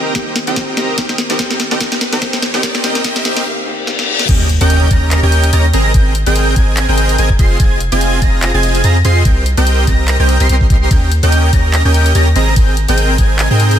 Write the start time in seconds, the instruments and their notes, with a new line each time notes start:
Already playing: felt piano D#3 A#3 C4 G4, supersaw synth C4 G4 A#4 D#5 A#5, riser
0.14 felt piano D#3 A#3 C4 G4, supersaw synth C4 G4 A#4 D#5 G5, kick, snare, closed hi-hat
0.36 snare, closed hi-hat
0.46 808-style bass G#2, felt piano D#3 A#3 C4 G4, supersaw synth C4 G4 A#4 D#5 G5, closed hi-hat
0.56 kick, snare, closed hi-hat
0.76 felt piano D#3 A#3 C4 G4, supersaw synth C4 G4 A#4 D#5 A#5, snare, closed hi-hat
0.97 felt piano D#3 A#3 C4 G4, supersaw synth C4 G4 A#4 D#5 G5, kick, snare, closed hi-hat
1.09 snare
1.18 snare, closed hi-hat
1.29 felt piano D#3 A#3 C4 G4, supersaw synth C4 G4 A#4 D#5 G5, snare, closed hi-hat
1.38 felt piano D#3 A#3 C4 G4, supersaw synth C4 G4 A#4 D#5 G5, kick, snare, closed hi-hat
1.51 snare
1.60 snare, closed hi-hat
1.70 808-style bass F1, felt piano D#3 A#3 C4 G4, supersaw synth C4 G4 A#4 D#5 G5, snare
1.79 felt piano D#3 C4 G4, supersaw synth C4 G4 A#4 D#5 G5, kick, snare, closed hi-hat
1.92 snare
2.01 snare, closed hi-hat
2.12 felt piano D#3 A#3 C4 G4, supersaw synth C4 G4 A#4 D#5 G5, snare, closed hi-hat
2.21 808-style bass F2, felt piano D#3 A#3 C4 G4, supersaw synth C4 G4 A#4 D#5 G5, kick, snare, closed hi-hat
2.33 snare
2.42 snare, closed hi-hat
2.53 808-style bass C2, felt piano D#3 A#3 C4 G4, supersaw synth C4 G4 A#4 D#5 G5, snare
2.62 felt piano D#3 A#3 C4 G4, supersaw synth C4 G4 A#4 D#5 G5, kick, snare, closed hi-hat
2.75 snare
2.83 808-style bass C2, felt piano D#3 A#3 C4 G4, supersaw synth C4 G4 A#4 D#5 G5, snare, closed hi-hat
2.95 snare, closed hi-hat
3.03 felt piano D#3 A#3 C4 G4, supersaw synth C4 G4 A#4 D#5 G5, kick, snare, closed hi-hat
3.16 snare
3.24 felt piano D#3 A#3 C4 G4, supersaw synth C4 G4 A#4 D#5 G5, snare, closed hi-hat
3.37 snare
3.45 felt piano D#3 A#3 C4 G4, reverse cymbal
3.66 felt piano D#3 A#3 C4 G4
3.86 felt piano D#3 A#3 C4 G4, snare
3.99 snare
4.07 felt piano D#3 A#3 C4 G4
4.19 snare
4.29 808-style bass D#2, supersaw synth C#4 G4 A#4 D#5 G5, digital synth lead G6, kick, closed hi-hat, crash, impact
4.49 closed hi-hat
4.61 808-style bass D#2, supersaw synth C#4 G4 A#4 D#5 G5, digital synth lead G6, closed hi-hat
4.70 closed hi-hat
4.91 808-style bass D#2, supersaw synth C#4 G4 A#4 D#5 A#5, digital synth lead A#6, kick, closed hi-hat
5.11 clap, closed hi-hat
5.23 808-style bass D#2, supersaw synth C#4 G4 A#4 D#5 G5, digital synth lead G6
5.32 closed hi-hat
5.44 closed hi-hat
5.53 808-style bass D#2, supersaw synth C#4 G4 A#4 D#5 A#5, digital synth lead A#6, closed hi-hat
5.73 808-style bass G#1, supersaw synth C4 G#4 A#4 D#5 A#5, digital synth lead A#6, closed hi-hat
5.94 808-style bass G#1, supersaw synth C4 G#4 A#4 D#5 G5, digital synth lead G6, kick, closed hi-hat
6.15 closed hi-hat
6.26 808-style bass G#1, supersaw synth C4 G#4 A#4 D#5 G5, digital synth lead G6, closed hi-hat
6.36 closed hi-hat
6.56 808-style bass G#1, supersaw synth C4 G#4 A#4 D#5 G#5, digital synth lead G#6, kick, closed hi-hat
6.77 clap, closed hi-hat
6.88 808-style bass G#1, supersaw synth C4 G#4 A#4 D#5 G5, digital synth lead G6
6.98 closed hi-hat
7.09 closed hi-hat
7.18 808-style bass G#1, supersaw synth C4 G#4 A#4 D#5 G#5, digital synth lead G#6, closed hi-hat
7.30 kick
7.39 808-style bass F1, supersaw synth C4 F4 G#4 D#5 C6, digital synth lead C7, kick, closed hi-hat
7.60 808-style bass F1, supersaw synth C4 F4 G#4 D#5 G#5, digital synth lead G#6, kick, closed hi-hat
7.80 closed hi-hat
7.92 808-style bass F1, supersaw synth C4 F4 G#4 D#5 G#5, digital synth lead G#6, closed hi-hat
8.01 closed hi-hat
8.22 808-style bass F1, supersaw synth C4 F4 G#4 D#5 A#5, digital synth lead A#6, kick, closed hi-hat
8.43 clap, closed hi-hat
8.54 808-style bass F1, supersaw synth C4 F4 G#4 D#5 G#5, digital synth lead G#6
8.63 closed hi-hat
8.75 closed hi-hat
8.84 808-style bass F2, supersaw synth C4 F4 G#4 D#5 A#5, digital synth lead A#6, closed hi-hat
9.05 808-style bass F2, supersaw synth C4 F4 G#4 D#5 C6, digital synth lead C7, closed hi-hat
9.25 808-style bass C2, supersaw synth C4 G4 A#4 D#5 G5, digital synth lead G6, kick, closed hi-hat
9.46 closed hi-hat
9.57 808-style bass C2, supersaw synth C4 G4 A#4 D#5 G5, digital synth lead G6, closed hi-hat
9.67 closed hi-hat
9.87 808-style bass C2, supersaw synth C4 G4 A#4 D#5 A#5, digital synth lead A#6, kick, closed hi-hat
10.08 clap, closed hi-hat
10.19 808-style bass C2, supersaw synth C4 G4 A#4 D#5 G5, digital synth lead G6
10.29 closed hi-hat
10.40 808-style bass C2, supersaw synth C4 G4 A#4 D#5 C6, digital synth lead C7, closed hi-hat
10.49 808-style bass C2, supersaw synth C4 G4 A#4 D#5 C6, digital synth lead C7, closed hi-hat
10.61 kick
10.70 kick, closed hi-hat
10.91 808-style bass D#2, supersaw synth C#4 G4 A#4 D#5 G5, digital synth lead G6, kick, closed hi-hat, ride
11.12 closed hi-hat
11.23 808-style bass D#2, supersaw synth C#4 G4 A#4 D#5 G5, digital synth lead G6, closed hi-hat
11.32 closed hi-hat
11.53 808-style bass D#2, supersaw synth C#4 G4 A#4 D#5 A#5, digital synth lead A#6, kick, closed hi-hat
11.74 clap, closed hi-hat, ride
11.85 808-style bass D#2, supersaw synth C#4 G4 A#4 D#5 G5, digital synth lead G6
11.94 closed hi-hat
12.06 closed hi-hat
12.15 808-style bass D#2, supersaw synth C#4 G4 A#4 D#5 A#5, digital synth lead A#6, closed hi-hat
12.36 808-style bass G#1, supersaw synth C4 G#4 A#4 D#5 A#5, digital synth lead A#6, closed hi-hat
12.56 808-style bass G#1, supersaw synth C4 G#4 A#4 D#5 G5, digital synth lead G6, kick, closed hi-hat, ride
12.77 closed hi-hat
12.88 808-style bass G#1, supersaw synth C4 G#4 A#4 D#5 G5, digital synth lead G6, closed hi-hat
12.98 closed hi-hat
13.18 808-style bass G#1, supersaw synth C4 G#4 A#4 D#5 G#5, digital synth lead G#6, kick, closed hi-hat
13.39 clap, closed hi-hat, ride
13.51 808-style bass G#2, supersaw synth C4 G#4 A#4 D#5 G5, digital synth lead G6
13.60 closed hi-hat
13.71 closed hi-hat